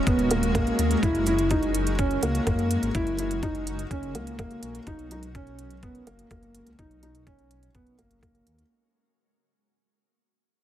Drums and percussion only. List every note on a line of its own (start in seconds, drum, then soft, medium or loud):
0.07 kick medium
0.07 closed hi-hat soft
0.19 closed hi-hat soft
0.31 closed hi-hat medium
0.43 closed hi-hat soft
0.55 kick loud
0.55 closed hi-hat soft
0.67 closed hi-hat soft
0.79 closed hi-hat medium
0.91 closed hi-hat soft
1.03 kick medium
1.03 closed hi-hat soft
1.15 closed hi-hat soft
1.27 closed hi-hat medium
1.39 closed hi-hat soft
1.51 kick medium
1.51 closed hi-hat soft
1.63 closed hi-hat soft
1.75 closed hi-hat medium
1.87 closed hi-hat soft
1.99 kick medium
1.99 closed hi-hat soft
2.11 closed hi-hat soft
2.23 closed hi-hat medium
2.35 closed hi-hat soft
2.47 kick medium
2.47 closed hi-hat soft
2.59 closed hi-hat soft
2.71 closed hi-hat medium
2.83 closed hi-hat soft
2.95 kick medium
2.95 closed hi-hat soft
3.07 closed hi-hat soft
3.19 closed hi-hat medium
3.31 closed hi-hat soft
3.43 kick medium
3.43 closed hi-hat soft
3.55 closed hi-hat soft
3.67 closed hi-hat medium
3.79 closed hi-hat soft
3.91 kick medium
3.91 closed hi-hat soft
4.03 closed hi-hat soft
4.15 closed hi-hat medium
4.27 closed hi-hat soft
4.39 kick medium
4.39 closed hi-hat soft
4.51 closed hi-hat soft
4.63 closed hi-hat medium
4.75 closed hi-hat soft
4.87 kick medium
4.87 closed hi-hat soft
4.99 closed hi-hat soft
5.11 closed hi-hat medium
5.23 closed hi-hat soft
5.35 kick medium
5.35 closed hi-hat soft
5.47 closed hi-hat soft
5.59 closed hi-hat medium
5.71 closed hi-hat soft
5.83 kick medium
5.83 closed hi-hat soft
5.95 closed hi-hat soft
6.07 closed hi-hat medium
6.19 closed hi-hat soft
6.31 kick medium
6.31 closed hi-hat soft
6.43 closed hi-hat soft
6.55 closed hi-hat medium
6.67 closed hi-hat soft
6.79 kick medium
6.79 closed hi-hat soft
6.91 closed hi-hat soft
7.03 closed hi-hat medium
7.15 closed hi-hat soft
7.27 kick medium
7.27 closed hi-hat soft
7.39 closed hi-hat soft
7.51 closed hi-hat medium
7.63 closed hi-hat soft
7.75 kick medium
7.75 closed hi-hat soft
7.87 closed hi-hat soft
7.99 closed hi-hat medium
8.11 closed hi-hat soft
8.23 kick medium
8.23 closed hi-hat soft
8.35 closed hi-hat soft
8.47 closed hi-hat medium
8.59 closed hi-hat soft